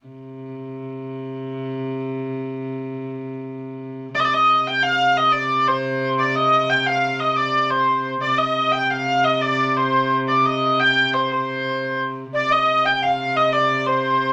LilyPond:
<<
  \new Staff \with { instrumentName = "Hurdy-gurdy" } { \time 6/8 \key c \minor \tempo 4. = 117 r2. | r2. | r2. | r2. |
d''32 ees''32 d''16 ees''4 g''8 f''4 | ees''8 d''4 c''4~ c''32 r16. | d''8 ees''4 g''8 f''4 | ees''8 d''4 c''4~ c''32 r16. |
d''8 ees''4 g''8 f''4 | ees''8 d''4 c''4~ c''32 r16. | d''8 ees''4 g''4 c''8 | c''2 r4 |
d''8 ees''4 g''8 f''4 | ees''8 d''4 c''4~ c''32 r16. | }
  \new Staff \with { instrumentName = "Recorder" } { \time 6/8 \key c \minor r2. | r2. | r2. | r2. |
r2. | r2. | r2. | r2. |
r2. | r2. | r2. | r2. |
d''8 ees''4 g''8 f''4 | ees''8 d''4 c''4 r8 | }
  \new Staff \with { instrumentName = "Viola da gamba" } { \clef bass \time 6/8 \key c \minor c2.~ | c2.~ | c2.~ | c2. |
c2.~ | c2.~ | c2.~ | c2. |
c2.~ | c2.~ | c2.~ | c2. |
c2.~ | c2. | }
>>